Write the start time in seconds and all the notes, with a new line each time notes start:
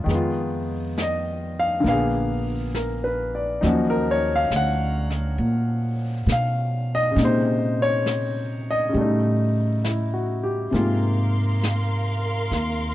Already playing: G#3 A#3 D#4 F4 G#4 D#5
0.04 F2 D#3 G#3
0.09 B3, brush sweep, snare
0.14 F4
0.98 snare, hi-hat pedal
1.02 D#5
1.59 F5
1.80 D3 A#3
1.84 A#1 B3, brush sweep, snare
1.88 G#4 F5
2.74 A#4, snare, hi-hat pedal
3.04 B4
3.35 D5
3.61 D#2 F#3 C#4 D#4, brush sweep, snare
3.66 F3 F#4
3.90 A#4
4.11 C#5
4.36 F5
4.50 D2, snare, hi-hat pedal
4.56 F#5
5.10 snare
5.38 A#2, brush sweep
6.26 B2, snare, hi-hat pedal
6.32 F5
6.95 D#5
7.11 C#3 G#3
7.16 A#2 C3, brush sweep, snare
7.23 D#4 C5
7.82 C#5
8.06 snare, hi-hat pedal
8.71 D#5
8.89 C#3
8.93 A2 G3 A3, brush sweep
9.01 D#4
9.84 E4, snare, hi-hat pedal
10.14 F#4
10.43 G4
10.71 G#2 C3 A#3 G#4 A#4 F5 C6, brush sweep, snare
10.76 F4
11.63 snare, hi-hat pedal
12.51 D#2, brush sweep, snare